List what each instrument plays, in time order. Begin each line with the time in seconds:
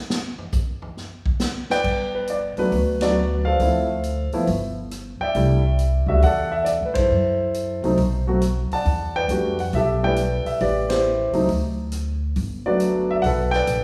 0.10 snare
0.38 floor tom
0.52 kick, hi-hat pedal
0.82 floor tom
0.97 snare
1.26 kick
1.39 snare, hi-hat pedal
1.70 grand piano B4 D5 G5, snare
1.84 upright bass G1, kick, crash
2.15 grand piano B4
2.27 grand piano D5, closed hi-hat
2.56 grand piano F#3 A3 B3 D4 F#4 B4, muted upright bass stroke, open hi-hat
2.72 upright bass D2, kick, open hi-hat
3.01 grand piano F#3 A3 B3 D4 F#4 B4 D5, snare, ride
3.45 grand piano A4 C5 F5
3.59 upright bass D2, grand piano F3 A3 C4 E4, kick, open hi-hat
4.03 closed hi-hat
4.32 grand piano F3 A3 B3 E4, muted upright bass stroke, open hi-hat
4.47 upright bass G1, kick, open hi-hat
4.91 cross-stick, closed hi-hat
5.20 grand piano D5 E5 G5, muted upright bass stroke
5.35 upright bass C2, grand piano G3 A3 D4 E4, kick, open hi-hat
5.79 closed hi-hat
6.06 upright bass C#2, grand piano G3 A3 D4 F#4 E5
6.20 upright bass E2, grand piano E5 F#5, kick, open hi-hat
6.25 grand piano A4 D5
6.51 grand piano E5
6.65 grand piano D5, cross-stick, closed hi-hat
6.81 upright bass A2
6.85 grand piano B4
6.94 upright bass G2, grand piano C5, kick, ride
6.98 grand piano E4 A4
7.10 upright bass F#2
7.54 closed hi-hat
7.82 upright bass C2, grand piano F#3 A3 C4 D#4, open hi-hat
7.97 upright bass B1, kick, open hi-hat
8.27 grand piano F#3 A3 C4 F#4
8.41 cross-stick, closed hi-hat
8.71 grand piano D5 F#5 A5, muted upright bass stroke, open hi-hat
8.85 upright bass E2, kick, open hi-hat
9.16 grand piano B4 D5 G5
9.28 upright bass F2, grand piano G3 A3 D4 F#4, closed hi-hat
9.59 grand piano F#5, open hi-hat
9.73 upright bass B1, grand piano G4 A4 E5, kick, open hi-hat
10.03 grand piano G3 A3 D4 E4 B4 D5 G5
10.16 cross-stick, closed hi-hat
10.45 grand piano E5, muted upright bass stroke, open hi-hat
10.60 upright bass A1, grand piano G4 B4 D5, kick, open hi-hat
10.89 grand piano E4 G4 C5, snare, ride
11.33 upright bass C#2, grand piano F#3 A3 C4 D#4, open hi-hat
11.48 upright bass D2, kick, open hi-hat
11.92 cross-stick, closed hi-hat
12.36 upright bass G1, kick, open hi-hat
12.66 grand piano F#3 A3 B3 D4 F#4 B4 D5
12.80 closed hi-hat
13.11 grand piano E5
13.22 upright bass B1, grand piano F#5, kick, open hi-hat
13.26 grand piano A4 B4
13.51 grand piano G5, snare
13.55 grand piano B4 D5
13.67 upright bass A#1, cross-stick, closed hi-hat